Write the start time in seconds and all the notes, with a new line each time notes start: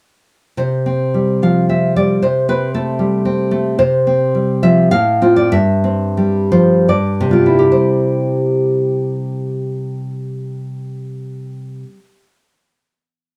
0.57 C3 C5
0.86 C4
1.14 G3
1.42 F3 F5
1.69 C4 E5
1.96 G3 D5
2.22 C3 C5
2.49 C4 B4
2.74 A3 A4
2.99 G3
3.25 C4
3.51 A3
3.79 C3 C5
4.07 C4
4.35 G3
4.63 F3 E5
4.91 A2 F5
5.22 C4 F4
5.36 D5
5.52 G2 E5
5.84 C4
6.17 G3
6.52 F3 C5
6.88 G2 D5
7.21 C3
7.31 G3 B3 F4
7.46 E4
7.59 G4
7.72 C5